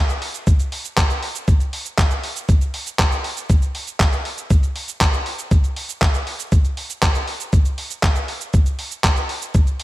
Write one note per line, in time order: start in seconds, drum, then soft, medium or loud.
0.09 closed hi-hat soft
0.09 cabasa soft
0.22 open hi-hat loud
0.34 closed hi-hat soft
0.34 cabasa medium
0.47 kick loud
0.47 closed hi-hat loud
0.47 cabasa soft
0.60 closed hi-hat soft
0.60 cabasa soft
0.72 open hi-hat loud
0.85 closed hi-hat soft
0.85 cabasa medium
0.97 kick loud
0.97 clap loud
0.97 cabasa soft
1.10 closed hi-hat soft
1.10 cabasa soft
1.23 open hi-hat loud
1.35 closed hi-hat soft
1.35 cabasa medium
1.48 kick loud
1.48 closed hi-hat loud
1.48 cabasa soft
1.60 closed hi-hat soft
1.60 cabasa soft
1.73 open hi-hat loud
1.86 closed hi-hat soft
1.86 cabasa medium
1.98 kick loud
1.98 clap loud
1.98 closed hi-hat loud
1.98 cabasa soft
2.11 closed hi-hat soft
2.11 cabasa soft
2.23 open hi-hat loud
2.36 closed hi-hat soft
2.36 cabasa medium
2.49 kick loud
2.49 closed hi-hat loud
2.49 cabasa soft
2.61 closed hi-hat soft
2.61 cabasa soft
2.74 open hi-hat loud
2.87 closed hi-hat soft
2.87 cabasa medium
2.99 kick loud
2.99 clap loud
2.99 closed hi-hat loud
2.99 cabasa soft
3.12 closed hi-hat soft
3.12 cabasa soft
3.24 open hi-hat loud
3.37 closed hi-hat soft
3.37 cabasa medium
3.50 kick loud
3.50 closed hi-hat medium
3.50 cabasa soft
3.62 closed hi-hat soft
3.62 cabasa soft
3.75 open hi-hat loud
3.87 closed hi-hat soft
3.87 cabasa medium
4.00 kick loud
4.00 clap loud
4.00 closed hi-hat loud
4.00 cabasa soft
4.13 closed hi-hat soft
4.13 cabasa soft
4.25 open hi-hat loud
4.38 closed hi-hat soft
4.38 cabasa medium
4.50 kick loud
4.50 closed hi-hat loud
4.50 cabasa soft
4.63 closed hi-hat soft
4.63 cabasa soft
4.76 open hi-hat loud
4.88 closed hi-hat soft
4.88 cabasa medium
5.01 kick loud
5.01 clap loud
5.01 closed hi-hat loud
5.01 cabasa soft
5.13 closed hi-hat soft
5.13 cabasa soft
5.26 open hi-hat loud
5.39 closed hi-hat soft
5.39 cabasa medium
5.51 kick loud
5.51 closed hi-hat medium
5.51 cabasa soft
5.64 closed hi-hat soft
5.64 cabasa soft
5.76 open hi-hat loud
5.89 closed hi-hat soft
5.89 cabasa medium
6.02 kick loud
6.02 clap loud
6.02 closed hi-hat medium
6.02 cabasa soft
6.14 closed hi-hat soft
6.14 cabasa soft
6.27 open hi-hat loud
6.39 closed hi-hat soft
6.39 cabasa medium
6.52 kick loud
6.52 closed hi-hat medium
6.52 cabasa soft
6.65 closed hi-hat soft
6.65 cabasa soft
6.77 open hi-hat loud
6.90 closed hi-hat soft
6.90 cabasa medium
7.02 kick loud
7.02 clap loud
7.02 closed hi-hat medium
7.02 cabasa soft
7.15 closed hi-hat soft
7.15 cabasa soft
7.28 open hi-hat loud
7.40 closed hi-hat soft
7.40 cabasa medium
7.53 kick loud
7.53 closed hi-hat medium
7.53 cabasa soft
7.65 closed hi-hat soft
7.65 cabasa soft
7.78 open hi-hat loud
7.91 closed hi-hat soft
7.91 cabasa medium
8.03 kick loud
8.03 clap loud
8.03 closed hi-hat medium
8.03 cabasa medium
8.16 closed hi-hat soft
8.16 cabasa soft
8.28 open hi-hat loud
8.41 closed hi-hat soft
8.41 cabasa medium
8.53 kick loud
8.53 closed hi-hat medium
8.53 cabasa medium
8.66 closed hi-hat soft
8.66 cabasa soft
8.79 open hi-hat loud
8.91 closed hi-hat soft
8.91 cabasa medium
9.04 kick loud
9.04 clap loud
9.04 closed hi-hat medium
9.04 cabasa soft
9.17 closed hi-hat soft
9.17 cabasa soft
9.29 open hi-hat loud
9.42 closed hi-hat soft
9.42 cabasa medium
9.54 kick loud
9.54 closed hi-hat medium
9.54 cabasa medium
9.67 closed hi-hat soft
9.67 cabasa soft
9.80 open hi-hat loud